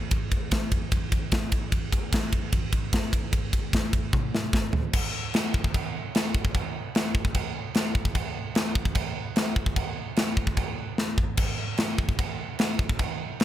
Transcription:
0.11 kick, ride
0.32 kick, ride
0.51 kick, snare, ride
0.72 kick, ride
0.92 kick, ride
1.12 kick, ride
1.32 kick, snare, ride
1.52 kick, ride
1.72 kick, ride
1.92 kick, ride
2.13 kick, snare, ride
2.32 kick, ride
2.52 kick, ride
2.73 kick, ride
2.93 kick, snare, ride
3.13 kick, ride
3.33 kick, ride
3.53 kick, ride
3.73 kick, snare, ride
3.93 kick, ride
4.13 kick, high tom
4.35 snare
4.53 kick, snare
4.73 floor tom
4.93 kick, crash, china
5.34 snare, china
5.54 kick
5.64 kick
5.74 kick, china
6.15 snare, china
6.35 kick
6.45 kick
6.54 kick, china
6.95 snare, china
7.15 kick
7.25 kick
7.34 kick, china
7.75 snare, china
7.95 kick
8.05 kick
8.15 kick, china
8.55 snare, china
8.75 kick
8.85 kick
8.95 kick, china
9.36 snare, china
9.56 kick
9.66 kick
9.76 kick, china
10.16 snare, china
10.37 kick
10.47 kick
10.57 kick, china
10.98 snare
11.18 kick
11.37 kick, crash, china
11.78 snare, china
11.98 kick
12.09 kick
12.19 kick, china
12.59 snare, china
12.79 kick
12.89 kick
12.99 kick, china
13.40 snare, china

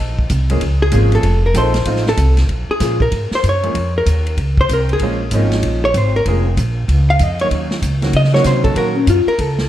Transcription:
Already playing: D#5
0.00 A#1
0.19 kick
0.30 C2, kick, hi-hat pedal, ride
0.50 F3 G#3 A#3 C#4 G#4, ride
0.61 C#2, kick, ride
0.82 G#4
0.92 G#1 F3 G#3 A#3 C#4 G#4, kick, hi-hat pedal, ride
1.12 A4, ride
1.23 F1, kick, ride
1.46 A#4
1.54 A#1 F3 A3 C4 D#4 A4 C5, kick, hi-hat pedal, ride
1.74 snare, ride
1.85 A1 F3 A3 C4 D#4 F4, kick, ride
1.96 snare
2.06 A4, snare
2.17 C2, kick, hi-hat pedal, ride
2.37 snare, ride
2.49 A#1, kick, ride
2.69 G#4, muted upright bass stroke
2.80 A#2 F3 G#3 A#3 C#4 G#4, kick, snare, hi-hat pedal, ride
3.00 A#4, kick
3.12 G#2, kick, ride
3.31 muted upright bass stroke, snare
3.35 C5
3.43 F#2, kick, hi-hat pedal, ride
3.49 C#5
3.63 F3 G#3 A#3 C#4 G#4, ride
3.74 F2, kick, ride
3.98 A#4
4.06 D#2, kick, hi-hat pedal, ride
4.27 ride
4.37 C#2, kick, ride
4.57 C5, kick
4.69 C2, kick, hi-hat pedal, ride
4.73 A#4
4.89 ride
4.93 G#4
4.99 A#1 F3 G#3 A#3 C#4 G#4, kick, ride
5.31 G#1 F3 G#3 A#3 C#4 D#4, kick, hi-hat pedal, ride
5.52 snare, ride
5.63 A#1, kick, ride
5.85 C#5
5.94 G#1 C5, kick, hi-hat pedal, ride
6.16 A#4
6.26 F1 F3 G#3 A#3 C#4 G#4, kick, ride
6.57 A#1, kick, hi-hat pedal, ride
6.88 C#2, kick, ride
7.10 F5
7.19 F2 D#5, kick, hi-hat pedal, ride
7.39 D#3 F#3 A#3 C#4 D#4 C#5, ride
7.51 D#2, kick, ride
7.71 snare
7.82 C#2, kick, hi-hat pedal, ride
8.02 D#3 F#3 A#3 C#4 F#4, snare, ride
8.13 C#3 D#5, kick, ride
8.24 snare
8.33 D#3 F#3 A#3 C#4 F#4 C#5, snare
8.44 C3 C5, kick, snare, hi-hat pedal, ride
8.64 A4, kick, ride
8.75 A#2 D#3 F#3 A#3 C#4 F#4 A#4, kick, ride
8.96 C#4
9.07 F#2 F4, kick, hi-hat pedal, ride
9.26 A#4, muted upright bass stroke
9.39 C#2 A4, kick, ride
9.58 snare

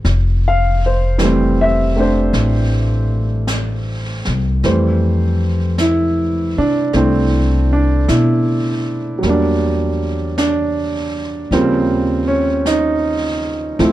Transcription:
0.05 F1, brush sweep, snare
0.48 F5
0.86 C5
1.18 E3 G3 A3, brush sweep, snare, hi-hat pedal
1.23 C4
1.61 E5
1.96 A3 C4 D4
2.00 C5
2.33 A1, brush sweep, snare
3.47 brush sweep, snare, hi-hat pedal
4.25 C2, snare
4.63 F2 E3 G3 A3 C5, brush sweep, snare
5.78 E4, brush sweep, snare, hi-hat pedal
6.58 C3 D4
6.93 C2 A3 C4 D4 E4, brush sweep, snare
7.73 D4
8.08 B2 E4, brush sweep, snare, hi-hat pedal
9.19 F#3 G3
9.23 E2 A#3, brush sweep, snare
9.29 D4
10.38 D4, brush sweep, snare, hi-hat pedal
11.51 D#2 C#3 F3 G3 A#3 C4, brush sweep, snare
12.28 C#4
12.66 D#4, brush sweep, snare, hi-hat pedal
13.79 D2 F3 A3 C4 E4, brush sweep, snare

